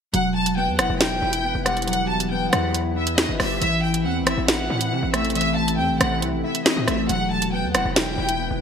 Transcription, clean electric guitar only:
0.13 F#3
0.57 B3
0.79 E4
1.22 E4
1.44 B3
1.65 G3
1.87 F#3
2.31 B3
2.53 E4
2.96 E4
3.18 B3
3.40 G3
3.61 E3
4.05 C4
4.26 E4
4.70 E4
4.92 C4
5.13 A3
5.35 E3
5.79 C4
6.01 E4
6.44 E4
6.66 C4
6.88 A3
7.09 F#3
7.53 B3
7.75 E4
8.18 E4
8.40 B3

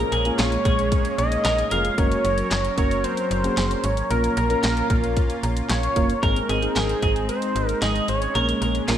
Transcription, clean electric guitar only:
0.12 G#4
0.39 F4
0.65 G#4
1.45 A#4
1.72 A#4
6.23 A#4
6.49 G#4
6.76 A#4
7.03 G#4
7.82 G#4
8.35 A#4
8.62 A#4
8.88 F4

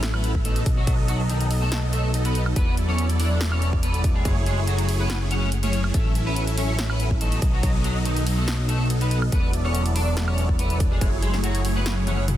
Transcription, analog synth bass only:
Already playing: A1
0.66 B1
2.56 E1
4.25 F#1
5.94 A1
7.42 B1
9.32 E1
11.01 F#1

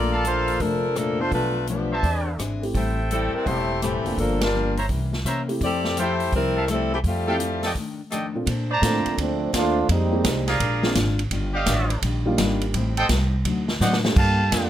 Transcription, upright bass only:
Already playing: A#1
0.60 F1
1.32 B1
2.03 E2
2.38 G#1
2.74 A1
3.34 muted upright bass stroke
3.46 E1
4.05 F1
4.18 G1
4.89 C2
5.25 C3
5.61 F2
6.32 C2
7.04 F2
8.47 A#2
8.82 A2
9.06 muted upright bass stroke
9.18 D2
9.54 D#2
9.89 F2
10.24 C2
10.60 A#1
10.95 G#1
11.31 G1
11.67 A1
12.02 A#1
12.38 G#1
12.74 A1
13.09 C2
13.45 D2
13.81 A2
14.16 G2
14.52 F2

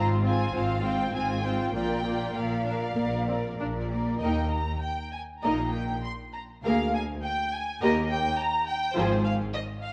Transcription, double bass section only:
Already playing: G#1
0.55 G#1
1.13 G#1
1.73 A#1
2.34 A#1
2.96 A#1
3.59 A#1
4.21 D#2
5.43 A#1
6.64 D2
7.81 D#2
8.96 G#1

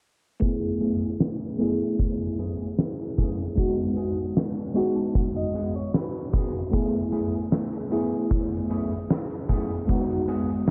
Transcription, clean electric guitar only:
0.80 F#2 A3 B3 E4 G#4
1.59 F#2 A3 B3 E4 G#4
2.38 F#2 A3 B3 E4 G#4
3.17 F#2 A3 B3 E4 G#4
3.96 B3 F#4 G#4
4.75 B3 F#4 G#4 G#5
4.96 A5
5.15 F#5
5.36 D#5
5.54 B3 F#4 G#4
5.76 C#5
5.94 B4
6.33 B3 F#4 G#4
7.12 F#2 A3 B3 E4 G#4
7.91 F#2 A3 B3 E4 G#4
8.70 F#2 A3 B3 E4 G#4
9.49 F#2 A3 B3 E4 G#4
10.28 B3 F#4 G#4

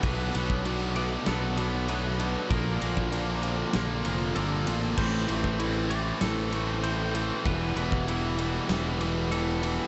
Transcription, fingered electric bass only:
0.03 B1
0.35 B1
1.28 B1
2.51 A#1
2.82 A#1
3.75 A#1
4.06 F1
4.36 G1
4.68 A1
4.98 A1
5.30 A1
6.22 A1
7.46 E1
7.76 E1
8.69 E1

